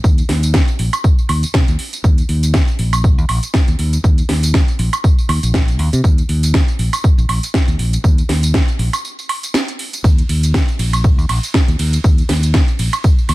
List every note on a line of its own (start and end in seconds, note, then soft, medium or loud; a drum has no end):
0.04 0.21 D#2 loud
0.04 kick loud
0.04 tambourine medium
0.18 closed hi-hat soft
0.18 tambourine soft
0.29 0.60 D#2 medium
0.29 snare medium
0.29 open hi-hat loud
0.43 closed hi-hat medium
0.43 tambourine medium
0.54 kick loud
0.54 snare loud
0.54 tambourine medium
0.68 closed hi-hat soft
0.68 tambourine soft
0.79 0.88 A#1 medium
0.79 open hi-hat loud
0.93 closed hi-hat medium
0.93 tambourine medium
0.93 high woodblock medium
1.04 kick loud
1.04 tambourine medium
1.18 tambourine soft
1.29 1.43 D#2 medium
1.29 open hi-hat loud
1.29 high woodblock medium
1.43 muted fingered electric bass stroke soft
1.43 closed hi-hat medium
1.43 tambourine medium
1.54 1.63 C3 medium
1.54 kick loud
1.54 snare loud
1.54 tambourine medium
1.68 1.75 D#2 medium
1.68 closed hi-hat soft
1.68 tambourine soft
1.79 open hi-hat loud
1.93 closed hi-hat medium
1.93 tambourine medium
2.04 2.21 D#2 medium
2.04 kick loud
2.04 tambourine medium
2.18 closed hi-hat soft
2.18 tambourine soft
2.29 2.60 D#2 medium
2.29 open hi-hat loud
2.43 closed hi-hat medium
2.43 tambourine medium
2.54 kick loud
2.54 snare loud
2.54 tambourine medium
2.68 closed hi-hat soft
2.68 tambourine soft
2.79 3.18 A#1 medium
2.79 open hi-hat loud
2.93 closed hi-hat medium
2.93 tambourine medium
2.93 high woodblock medium
3.04 kick loud
3.04 tambourine medium
3.18 3.25 D#2 medium
3.18 tambourine soft
3.29 3.38 A#1 medium
3.29 open hi-hat loud
3.29 high woodblock medium
3.43 closed hi-hat medium
3.43 tambourine medium
3.54 kick loud
3.54 snare loud
3.54 tambourine medium
3.68 3.75 D#2 medium
3.68 closed hi-hat soft
3.68 tambourine soft
3.79 3.96 D#2 medium
3.79 open hi-hat loud
3.93 closed hi-hat medium
3.93 tambourine medium
4.04 4.21 D#2 loud
4.04 kick loud
4.04 tambourine medium
4.18 closed hi-hat medium
4.18 tambourine soft
4.29 4.60 D#2 medium
4.29 snare medium
4.29 open hi-hat loud
4.43 closed hi-hat medium
4.43 tambourine medium
4.54 kick loud
4.54 snare loud
4.54 tambourine medium
4.68 closed hi-hat soft
4.68 tambourine soft
4.79 4.88 A#1 medium
4.79 open hi-hat loud
4.93 closed hi-hat medium
4.93 tambourine medium
4.93 high woodblock medium
5.04 kick loud
5.04 tambourine medium
5.19 tambourine soft
5.29 5.38 D#2 loud
5.29 open hi-hat loud
5.29 high woodblock medium
5.43 5.79 A#1 medium
5.43 closed hi-hat medium
5.43 tambourine medium
5.54 kick loud
5.54 snare loud
5.54 tambourine medium
5.68 closed hi-hat medium
5.68 tambourine soft
5.79 5.88 D#2 loud
5.79 open hi-hat loud
5.93 6.00 C3 loud
5.93 closed hi-hat medium
5.93 tambourine medium
6.04 6.21 D#2 loud
6.04 kick loud
6.04 tambourine medium
6.18 closed hi-hat medium
6.18 tambourine soft
6.29 6.60 D#2 medium
6.29 open hi-hat loud
6.43 closed hi-hat medium
6.43 tambourine medium
6.54 kick loud
6.54 snare loud
6.54 tambourine medium
6.68 closed hi-hat soft
6.68 tambourine soft
6.79 6.88 A#1 medium
6.79 open hi-hat loud
6.93 closed hi-hat medium
6.93 tambourine medium
6.93 high woodblock medium
7.04 muted fingered electric bass stroke soft
7.04 kick loud
7.04 tambourine medium
7.18 7.25 A#1 medium
7.18 tambourine soft
7.29 7.38 A#1 medium
7.29 open hi-hat loud
7.29 high woodblock medium
7.43 closed hi-hat medium
7.43 tambourine medium
7.54 kick loud
7.54 snare loud
7.54 tambourine medium
7.68 7.75 D#2 medium
7.68 closed hi-hat medium
7.68 tambourine soft
7.79 7.96 A#1 medium
7.79 open hi-hat loud
7.93 closed hi-hat medium
7.93 tambourine medium
8.04 8.21 D#2 loud
8.04 kick loud
8.04 tambourine medium
8.18 closed hi-hat medium
8.18 tambourine soft
8.29 8.60 D#2 medium
8.29 snare medium
8.29 open hi-hat loud
8.43 closed hi-hat medium
8.43 tambourine medium
8.54 kick loud
8.54 snare loud
8.54 tambourine medium
8.68 closed hi-hat soft
8.68 tambourine soft
8.79 8.88 A#1 medium
8.79 open hi-hat loud
8.93 closed hi-hat medium
8.93 tambourine medium
8.93 high woodblock medium
9.05 tambourine medium
9.19 tambourine soft
9.29 open hi-hat loud
9.29 high woodblock medium
9.43 closed hi-hat medium
9.43 tambourine medium
9.54 snare loud
9.54 tambourine medium
9.68 closed hi-hat medium
9.68 tambourine soft
9.79 open hi-hat loud
9.93 closed hi-hat medium
9.93 tambourine medium
10.04 10.21 D#2 loud
10.04 kick loud
10.04 ride medium
10.04 tambourine medium
10.18 closed hi-hat medium
10.18 tambourine soft
10.29 10.60 D#2 medium
10.29 open hi-hat loud
10.29 ride medium
10.43 closed hi-hat medium
10.43 tambourine medium
10.54 kick loud
10.54 snare loud
10.54 ride medium
10.54 tambourine medium
10.68 closed hi-hat soft
10.68 tambourine soft
10.79 11.18 A#1 medium
10.79 open hi-hat loud
10.79 ride medium
10.93 closed hi-hat medium
10.93 tambourine medium
10.93 high woodblock medium
11.04 kick loud
11.04 ride medium
11.04 tambourine medium
11.18 11.25 D#2 medium
11.18 tambourine soft
11.29 11.38 A#1 medium
11.29 open hi-hat loud
11.29 ride medium
11.29 high woodblock medium
11.43 closed hi-hat medium
11.43 tambourine medium
11.54 kick loud
11.54 snare loud
11.54 ride medium
11.54 tambourine medium
11.68 11.75 D#2 medium
11.68 closed hi-hat medium
11.68 tambourine soft
11.79 11.96 D#2 medium
11.79 open hi-hat loud
11.79 ride medium
11.93 closed hi-hat medium
11.93 tambourine medium
12.04 12.21 D#2 loud
12.04 kick loud
12.04 ride medium
12.04 tambourine medium
12.18 closed hi-hat medium
12.18 tambourine soft
12.29 12.60 D#2 medium
12.29 snare medium
12.29 open hi-hat loud
12.29 ride medium
12.43 closed hi-hat medium
12.43 tambourine medium
12.54 kick loud
12.54 snare loud
12.54 ride medium
12.54 tambourine medium
12.68 closed hi-hat soft
12.68 tambourine soft
12.79 12.88 A#1 medium
12.79 open hi-hat loud
12.79 ride medium
12.93 closed hi-hat medium
12.93 tambourine medium
12.93 high woodblock medium
13.04 kick loud
13.04 ride medium
13.04 tambourine medium
13.18 tambourine soft
13.29 13.34 D#2 loud
13.29 open hi-hat loud
13.29 ride medium
13.29 high woodblock medium